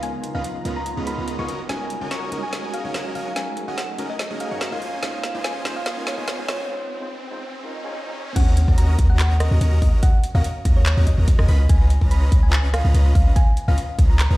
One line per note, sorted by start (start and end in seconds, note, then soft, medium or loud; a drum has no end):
0.00 1.45 C#3 medium
0.00 0.32 G#3 medium
0.00 1.45 B3 medium
0.00 0.32 B3 medium
0.00 6.65 D#4 medium
0.00 0.32 D#4 medium
0.00 1.45 F4 medium
0.00 0.32 F4 medium
0.00 0.32 A#4 medium
0.00 0.28 G#5 medium
0.00 4.78 A#5 medium
0.00 closed hi-hat medium
0.00 riser medium
0.24 closed hi-hat medium
0.34 0.41 C#2 loud
0.34 0.40 G#3 medium
0.34 0.40 B3 medium
0.34 0.43 C#4 medium
0.34 0.41 D#4 medium
0.34 0.43 F4 medium
0.34 0.41 F4 medium
0.34 0.41 A#4 medium
0.34 0.43 B4 medium
0.34 0.43 D#5 medium
0.34 0.68 F5 medium
0.34 0.43 A#5 medium
0.44 closed hi-hat medium
0.64 0.95 C#2 medium
0.64 0.76 G#3 medium
0.64 0.76 B3 medium
0.64 0.81 C#4 medium
0.64 0.76 D#4 medium
0.64 0.81 F4 medium
0.64 0.76 F4 medium
0.64 0.77 A#4 loud
0.64 0.81 B4 medium
0.64 0.81 D#5 medium
0.64 0.81 A#5 medium
0.64 closed hi-hat medium
0.76 1.01 A#5 medium
0.86 closed hi-hat medium
0.96 1.16 C#2 loud
0.96 1.04 G#3 medium
0.96 1.05 B3 medium
0.96 1.15 C#4 medium
0.96 1.05 D#4 medium
0.96 1.15 F4 medium
0.96 1.05 F4 medium
0.96 1.05 G#4 medium
0.96 1.15 B4 medium
0.96 1.15 D#5 medium
0.96 1.15 A#5 medium
1.06 1.36 G#3 medium
1.06 1.36 B3 medium
1.06 1.36 D#4 medium
1.06 1.36 F4 medium
1.06 1.37 A#4 loud
1.06 1.33 B5 medium
1.06 closed hi-hat medium
1.18 1.37 C#2 loud
1.18 1.36 C#4 medium
1.18 1.36 F4 medium
1.18 1.36 B4 medium
1.18 1.36 D#5 medium
1.18 1.36 A#5 medium
1.28 closed hi-hat medium
1.38 1.50 C#2 medium
1.38 1.44 G#3 medium
1.38 1.45 B3 medium
1.38 1.46 C#4 medium
1.38 1.45 D#4 medium
1.38 1.46 F4 medium
1.38 1.45 F4 medium
1.38 1.45 A#4 medium
1.38 1.46 B4 medium
1.38 1.46 D#5 medium
1.38 1.46 G#5 loud
1.38 1.64 C#6 medium
1.48 1.67 F#1 medium
1.48 4.79 F#3 medium
1.48 1.59 C#4 loud
1.48 1.59 F#4 medium
1.48 4.79 G#4 medium
1.48 1.59 A#4 medium
1.48 1.59 D#5 medium
1.48 1.59 A#5 loud
1.48 closed hi-hat medium
1.68 1.99 F#1 loud
1.68 1.98 G#3 medium
1.68 1.98 C#4 medium
1.68 1.85 C#4 medium
1.68 1.99 D#4 medium
1.68 1.85 F#4 medium
1.68 1.99 F#4 medium
1.68 1.85 A#4 medium
1.68 1.99 A#4 medium
1.68 1.85 D#5 medium
1.68 1.85 G#5 medium
1.68 2.04 G#5 loud
1.68 snare soft
1.68 closed hi-hat medium
1.90 closed hi-hat medium
2.00 2.30 F#1 loud
2.00 2.07 G#3 medium
2.00 2.07 C#4 medium
2.00 2.30 C#4 medium
2.00 2.07 D#4 medium
2.00 2.30 F#4 medium
2.00 2.08 F#4 medium
2.00 2.30 A#4 medium
2.00 2.08 A#4 medium
2.00 2.30 D#5 medium
2.00 2.30 G#5 loud
2.11 2.37 C#6 medium
2.11 snare medium
2.11 closed hi-hat medium
2.31 2.82 F#1 loud
2.31 2.42 G#3 medium
2.31 2.43 C#4 medium
2.31 2.82 C#4 medium
2.31 2.43 D#4 medium
2.31 2.82 F#4 medium
2.31 2.43 F#4 medium
2.31 2.82 A#4 medium
2.31 2.43 A#4 loud
2.31 2.82 D#5 medium
2.31 2.82 G#5 loud
2.31 closed hi-hat medium
2.43 2.68 G#5 medium
2.53 snare medium
2.53 closed hi-hat medium
2.63 2.81 G#3 medium
2.63 2.82 C#4 medium
2.63 2.82 D#4 medium
2.63 2.82 F#4 medium
2.63 2.82 G#4 medium
2.74 3.08 F5 medium
2.74 closed hi-hat medium
2.84 2.92 F#1 loud
2.84 2.94 G#3 loud
2.84 2.94 C#4 medium
2.84 2.93 C#4 medium
2.84 2.94 D#4 medium
2.84 2.93 F#4 medium
2.84 2.94 F#4 medium
2.84 2.93 A#4 medium
2.84 2.95 C#5 loud
2.84 2.93 D#5 medium
2.84 2.93 G#5 loud
2.94 3.13 F#1 loud
2.94 3.13 C#4 medium
2.94 3.13 F#4 medium
2.94 3.13 A#4 medium
2.94 3.13 D#5 medium
2.94 3.13 G#5 loud
2.94 snare medium
2.94 closed hi-hat medium
3.04 3.11 G#3 medium
3.04 3.11 C#4 medium
3.04 3.11 D#4 medium
3.04 3.12 F#4 medium
3.04 3.12 A#4 medium
3.15 3.29 F#1 loud
3.15 3.31 C#4 medium
3.15 3.31 F#4 medium
3.15 3.31 A#4 medium
3.15 3.31 D#5 medium
3.15 3.32 F5 medium
3.15 3.31 G#5 medium
3.15 open hi-hat medium
3.35 3.65 G#3 medium
3.35 3.65 C#4 medium
3.35 3.65 D#4 medium
3.35 3.66 F#4 medium
3.35 3.66 A#4 medium
3.35 3.62 G#5 loud
3.35 snare medium
3.35 closed hi-hat medium
3.57 closed hi-hat medium
3.67 3.75 F#1 loud
3.67 3.73 G#3 medium
3.67 3.74 C#4 medium
3.67 3.77 C#4 medium
3.67 3.74 D#4 medium
3.67 3.77 F#4 medium
3.67 3.74 F#4 medium
3.67 3.77 A#4 medium
3.67 3.74 A#4 medium
3.67 3.77 D#5 medium
3.67 4.01 F#5 medium
3.67 3.77 G#5 medium
3.78 snare medium
3.78 closed hi-hat medium
3.97 4.28 F#1 loud
3.97 4.09 G#3 loud
3.97 4.09 C#4 medium
3.97 4.14 C#4 medium
3.97 4.09 D#4 medium
3.97 4.14 F#4 medium
3.97 4.10 F#4 medium
3.97 4.14 A#4 medium
3.97 4.10 A#4 loud
3.97 4.14 D#5 medium
3.97 4.14 G#5 medium
3.97 closed hi-hat medium
4.10 4.35 D#5 medium
4.19 snare medium
4.19 closed hi-hat medium
4.29 4.49 F#1 loud
4.29 4.48 G#3 medium
4.29 4.48 C#4 medium
4.29 4.49 C#4 medium
4.29 4.49 D#4 medium
4.29 4.49 F#4 medium
4.29 4.49 G#4 medium
4.29 4.49 A#4 medium
4.29 4.49 D#5 medium
4.29 4.49 G#5 loud
4.40 4.66 F5 medium
4.40 closed hi-hat medium
4.50 4.70 F#2 loud
4.50 4.60 G#3 medium
4.50 4.61 C#4 medium
4.50 4.70 C#4 medium
4.50 4.61 D#4 medium
4.50 4.70 F#4 medium
4.50 4.61 F#4 medium
4.50 4.70 A#4 medium
4.50 4.61 C#5 loud
4.50 4.69 D#5 medium
4.50 4.70 C#6 medium
4.61 snare medium
4.61 closed hi-hat medium
4.71 5.01 C#2 medium
4.71 4.78 G#3 medium
4.71 4.78 C#4 medium
4.71 5.00 C#4 loud
4.71 4.78 D#4 medium
4.71 5.00 F4 medium
4.71 4.78 F#4 medium
4.71 4.79 A#4 medium
4.71 5.00 C5 medium
4.71 5.00 D#5 medium
4.71 4.97 F5 loud
4.71 5.00 G#5 loud
4.82 6.68 C#3 medium
4.82 6.68 F4 medium
4.82 6.68 D#5 medium
4.82 open hi-hat medium
5.01 5.32 C#2 loud
5.01 5.31 G#3 medium
5.01 5.32 C#4 medium
5.01 5.18 C#4 medium
5.01 5.32 D#4 medium
5.01 5.18 F4 medium
5.01 5.32 F4 medium
5.01 5.18 C5 medium
5.01 5.32 C5 medium
5.01 5.18 D#5 medium
5.01 5.37 F5 loud
5.01 5.18 G#5 medium
5.01 snare medium
5.01 closed hi-hat medium
5.24 snare medium
5.24 closed hi-hat medium
5.34 5.63 C#2 loud
5.34 5.40 G#3 medium
5.34 5.40 C#4 medium
5.34 5.63 C#4 medium
5.34 5.41 D#4 medium
5.34 5.63 F4 medium
5.34 5.41 F4 medium
5.34 5.63 C5 medium
5.34 5.41 C5 medium
5.34 5.63 D#5 medium
5.34 5.63 G#5 loud
5.44 5.70 G#5 loud
5.44 snare medium
5.44 closed hi-hat medium
5.64 6.16 C#2 loud
5.64 5.76 G#3 medium
5.64 5.76 C#4 medium
5.64 6.15 C#4 loud
5.64 5.76 D#4 medium
5.64 6.15 F4 medium
5.64 5.76 F4 medium
5.64 6.15 C5 medium
5.64 5.77 C5 loud
5.64 6.15 D#5 medium
5.64 6.15 G#5 loud
5.64 snare medium
5.64 closed hi-hat medium
5.76 6.01 F5 loud
5.86 snare medium
5.86 closed hi-hat medium
5.96 6.15 G#3 medium
5.96 6.15 C#4 medium
5.96 6.15 D#4 medium
5.96 6.16 F4 medium
5.96 6.16 A#4 medium
6.07 6.41 C#5 medium
6.07 snare medium
6.07 closed hi-hat medium
6.17 6.26 C#2 loud
6.17 6.27 G#3 loud
6.17 6.27 C#4 medium
6.17 6.26 C#4 medium
6.17 6.28 D#4 medium
6.17 6.26 F4 medium
6.17 6.28 F4 medium
6.17 6.26 C5 medium
6.17 6.28 C#5 loud
6.17 6.26 D#5 medium
6.17 6.26 G#5 loud
6.28 6.47 C#2 loud
6.28 6.46 C#4 medium
6.28 6.46 F4 medium
6.28 6.46 C5 medium
6.28 6.46 D#5 medium
6.28 6.46 G#5 medium
6.28 snare medium
6.28 closed hi-hat medium
6.38 6.44 G#3 medium
6.38 6.45 C#4 medium
6.38 6.45 D#4 medium
6.38 6.45 F4 medium
6.38 6.45 C5 medium
6.48 6.62 C#2 loud
6.48 6.64 C#4 medium
6.48 6.64 F4 medium
6.48 6.64 C5 medium
6.48 6.66 C#5 medium
6.48 6.64 D#5 medium
6.48 6.64 G#5 loud
6.48 snare medium
6.48 open hi-hat medium
6.68 6.98 G#3 medium
6.68 6.98 C#4 medium
6.68 6.99 D#4 medium
6.68 6.99 F4 medium
6.68 6.99 C5 medium
7.00 7.07 G#3 medium
7.00 7.07 C#4 medium
7.00 7.07 D#4 medium
7.00 7.08 F4 medium
7.00 7.08 C5 medium
7.31 7.42 G#3 loud
7.31 7.43 C#4 medium
7.31 7.43 D#4 medium
7.31 7.43 F4 medium
7.31 7.43 C5 loud
7.53 swell medium
7.63 7.82 G#3 medium
7.63 7.82 C#4 medium
7.63 7.82 D#4 medium
7.63 7.82 F4 medium
7.63 7.83 A#4 medium
7.84 7.94 G#3 loud
7.84 7.94 C#4 medium
7.84 7.94 D#4 medium
7.84 7.95 F4 medium
7.84 7.95 C#5 loud
8.05 8.11 G#3 medium
8.05 8.11 C#4 medium
8.05 8.12 D#4 medium
8.05 8.12 F4 medium
8.05 8.12 C5 loud
8.36 8.66 D#2 loud
8.36 8.52 C#4 medium
8.36 8.52 F#4 medium
8.36 8.52 A#4 medium
8.36 8.52 D#5 medium
8.36 8.70 F#5 loud
8.36 8.52 A#5 medium
8.36 kick loud
8.36 closed hi-hat medium
8.36 crash loud
8.57 closed hi-hat medium
8.68 8.97 D#2 loud
8.68 8.96 C#4 medium
8.68 8.96 F#4 medium
8.68 8.96 A#4 medium
8.68 8.96 D#5 medium
8.68 8.96 A#5 loud
8.68 kick medium
8.78 9.03 A#5 loud
8.78 closed hi-hat medium
8.99 9.49 D#2 loud
8.99 9.49 C#4 medium
8.99 9.49 F#4 medium
8.99 9.49 A#4 medium
8.99 9.49 D#5 medium
8.99 9.49 A#5 loud
8.99 kick loud
8.99 closed hi-hat medium
9.10 9.35 F#5 medium
9.19 clap loud
9.19 closed hi-hat medium
9.40 9.74 D#5 medium
9.40 cross-stick medium
9.40 closed hi-hat medium
9.51 9.59 D#2 loud
9.51 9.60 C#4 medium
9.51 9.60 F#4 medium
9.51 9.60 A#4 medium
9.51 9.60 D#5 medium
9.51 9.60 A#5 loud
9.61 9.80 D#2 loud
9.61 9.80 C#4 medium
9.61 9.80 F#4 medium
9.61 9.80 A#4 medium
9.61 9.80 D#5 medium
9.61 9.80 A#5 loud
9.61 closed hi-hat medium
9.82 9.95 D#2 medium
9.82 9.97 C#4 medium
9.82 9.97 F#4 medium
9.82 9.97 A#4 medium
9.82 9.99 D#5 medium
9.82 9.97 D#5 medium
9.82 9.97 A#5 medium
9.82 kick loud
9.82 open hi-hat medium
10.03 10.28 F#5 medium
10.03 kick loud
10.03 closed hi-hat medium
10.24 closed hi-hat medium
10.35 10.41 D#2 loud
10.35 10.43 C#4 medium
10.35 10.43 F#4 medium
10.35 10.43 A#4 medium
10.35 10.43 D#5 medium
10.35 10.68 F5 medium
10.35 10.43 A#5 medium
10.44 closed hi-hat medium
10.65 10.95 D#2 loud
10.65 10.81 C#4 medium
10.65 10.81 F#4 medium
10.65 10.81 A#4 medium
10.65 10.81 D#5 medium
10.65 10.81 A#5 medium
10.65 kick loud
10.65 closed hi-hat medium
10.77 11.01 C#5 medium
10.86 clap loud
10.86 closed hi-hat medium
10.97 11.16 D#2 medium
10.97 11.15 C#4 medium
10.97 11.15 F#4 medium
10.97 11.15 A#4 medium
10.97 11.15 D#5 medium
10.97 11.15 A#5 medium
11.07 11.33 D#5 medium
11.07 kick medium
11.07 closed hi-hat medium
11.18 11.37 D#2 loud
11.18 11.36 C#4 medium
11.18 11.36 F#4 medium
11.18 11.36 A#4 medium
11.18 11.36 D#5 medium
11.18 11.36 A#5 medium
11.28 kick loud
11.28 closed hi-hat medium
11.39 11.47 D#2 loud
11.39 11.46 C#4 medium
11.39 11.46 F#4 medium
11.39 11.46 A#4 medium
11.39 11.46 D#5 medium
11.39 11.64 D#5 loud
11.39 11.46 G#5 loud
11.39 cross-stick medium
11.48 11.67 C#2 loud
11.48 11.59 C#4 loud
11.48 11.59 F4 medium
11.48 11.59 B4 medium
11.48 11.59 D#5 loud
11.48 11.59 B5 loud
11.48 open hi-hat medium
11.69 11.99 C#2 loud
11.69 11.85 C#4 medium
11.69 11.85 F4 medium
11.69 11.85 B4 medium
11.69 11.85 D#5 medium
11.69 12.04 G#5 loud
11.69 11.85 A#5 medium
11.69 kick loud
11.69 closed hi-hat medium
11.90 closed hi-hat medium
12.01 12.30 C#2 loud
12.01 12.30 C#4 loud
12.01 12.30 F4 medium
12.01 12.30 B4 medium
12.01 12.30 D#5 medium
12.01 12.30 A#5 loud
12.01 kick medium
12.11 12.37 B5 loud
12.11 closed hi-hat medium
12.32 12.82 C#2 loud
12.32 12.82 C#4 loud
12.32 12.82 F4 medium
12.32 12.82 B4 medium
12.32 12.82 D#5 medium
12.32 12.82 A#5 loud
12.32 kick loud
12.32 closed hi-hat medium
12.43 12.68 G#5 medium
12.53 clap loud
12.53 closed hi-hat medium
12.74 13.08 F5 medium
12.74 cross-stick medium
12.74 closed hi-hat medium
12.85 12.92 C#2 loud
12.85 12.93 C#4 medium
12.85 12.93 F4 medium
12.85 12.93 B4 medium
12.85 12.93 D#5 medium
12.85 12.93 A#5 loud
12.94 13.13 C#2 loud
12.94 13.13 C#4 medium
12.94 13.13 F4 medium
12.94 13.13 B4 medium
12.94 13.13 D#5 medium
12.94 13.13 A#5 loud
12.94 closed hi-hat medium
13.15 13.29 C#2 loud
13.15 13.31 C#4 medium
13.15 13.31 F4 medium
13.15 13.31 B4 medium
13.15 13.31 D#5 medium
13.15 13.32 F5 medium
13.15 13.31 A#5 medium
13.15 kick loud
13.15 open hi-hat medium
13.36 13.62 G#5 loud
13.36 kick loud
13.36 closed hi-hat medium
13.57 closed hi-hat medium
13.68 13.75 C#2 loud
13.68 13.77 C#4 medium
13.68 13.77 F4 medium
13.68 13.77 B4 medium
13.68 13.77 D#5 medium
13.68 14.01 F5 loud
13.68 13.77 A#5 medium
13.78 closed hi-hat medium
13.99 14.28 C#2 loud
13.99 14.14 C#4 medium
13.99 14.14 F4 medium
13.99 14.14 B4 medium
13.99 14.14 D#5 medium
13.99 14.14 A#5 medium
13.99 kick loud
13.99 closed hi-hat medium
14.10 14.35 A#5 medium
14.19 clap loud
14.19 closed hi-hat medium
14.31 14.37 C#2 loud
14.31 14.37 C#4 medium
14.31 14.37 F4 medium
14.31 14.37 B4 medium
14.31 14.37 D#5 medium
14.31 14.37 A#5 loud